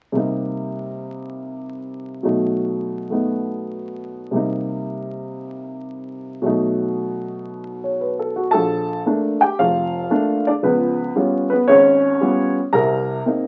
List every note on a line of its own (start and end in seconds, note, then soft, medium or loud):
0.12 2.23 C3 soft
0.12 2.24 G3 soft
0.12 2.24 A#3 soft
0.17 2.24 D#4 medium
2.23 4.33 B2 soft
2.23 4.34 F#3 soft
2.23 3.08 A3 soft
2.23 3.12 D#4 medium
3.10 4.33 A3 soft
3.10 4.34 B3 soft
3.10 4.34 D#4 soft
4.31 6.42 C3 soft
4.31 6.43 G3 soft
4.31 6.44 A#3 soft
4.36 6.45 D#4 medium
6.42 8.52 B2 soft
6.42 8.53 F#3 soft
6.42 8.54 A3 soft
6.46 8.55 D#4 medium
7.84 8.11 C#5 soft
8.01 8.34 B4 soft
8.19 8.46 A4 soft
8.36 8.63 F#4 soft
8.51 8.99 A#1 medium
8.51 9.02 A4 medium
8.51 9.01 A5 loud
9.06 9.43 A3 medium
9.06 9.43 A#3 soft
9.06 9.44 D4 medium
9.41 9.58 G4 medium
9.41 9.58 G5 medium
9.59 10.04 F1 medium
9.59 10.43 F4 medium
9.59 10.49 F5 medium
10.10 10.48 A3 medium
10.10 10.48 A#3 soft
10.10 10.46 D4 medium
10.47 10.53 D4 medium
10.47 10.52 D5 medium
10.63 11.09 C#2 medium
10.63 11.09 F3 medium
10.63 11.13 B3 medium
10.63 11.12 B4 medium
11.16 11.53 G3 medium
11.16 11.51 B3 soft
11.16 11.53 C#4 soft
11.16 11.53 F4 medium
11.50 11.67 B3 medium
11.50 11.68 B4 medium
11.68 12.14 G#1 medium
11.68 12.21 C#4 medium
11.68 12.52 C#5 loud
12.21 12.58 G3 medium
12.21 12.58 B3 soft
12.21 12.59 C#4 medium
12.21 12.59 F4 medium
12.73 13.19 C2 medium
12.73 13.18 C3 medium
12.73 13.23 A#4 medium
12.73 13.21 A#5 loud
13.26 13.47 A#3 medium
13.26 13.47 C4 soft
13.26 13.47 D#4 medium